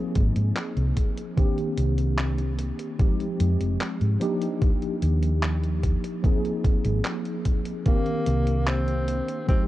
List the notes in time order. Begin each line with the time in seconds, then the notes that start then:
Already playing: F3 A#3 C4 D#4 G#4
0.16 G#1, kick, closed hi-hat
0.36 G#2, closed hi-hat
0.56 clap, closed hi-hat
0.77 C2, closed hi-hat
0.97 kick, closed hi-hat
1.17 closed hi-hat
1.36 D#3 A#3 C4 D4 G4, kick, closed hi-hat
1.58 closed hi-hat
1.78 C2, closed hi-hat
1.98 closed hi-hat
2.18 clap, closed hi-hat
2.38 closed hi-hat
2.59 closed hi-hat
2.79 closed hi-hat
2.98 F3 G#3 C4 D#4 G4, kick, closed hi-hat
3.20 closed hi-hat
3.40 F2, closed hi-hat
3.61 F1, closed hi-hat
3.81 clap, closed hi-hat
4.01 G#2, closed hi-hat
4.20 F3 A#3 D4 D#4 G4, closed hi-hat
4.42 closed hi-hat
4.62 kick, closed hi-hat
4.82 closed hi-hat
5.02 D#2, closed hi-hat
5.23 closed hi-hat
5.43 clap, closed hi-hat
5.63 closed hi-hat
5.83 kick, closed hi-hat
6.04 closed hi-hat
6.23 F3 A#3 C4 D#4 G#4, kick, closed hi-hat
6.45 closed hi-hat
6.64 kick, closed hi-hat
6.85 G#1, closed hi-hat
7.05 clap, closed hi-hat
7.25 closed hi-hat
7.45 kick, closed hi-hat
7.65 closed hi-hat
7.85 D#3 A#3 C4 D4 G4, kick, closed hi-hat
8.06 closed hi-hat
8.26 C2, closed hi-hat
8.47 closed hi-hat
8.67 C4, clap, closed hi-hat
8.88 closed hi-hat
9.08 closed hi-hat
9.28 closed hi-hat
9.46 F3 G#3 C4 D#4 G4, kick, closed hi-hat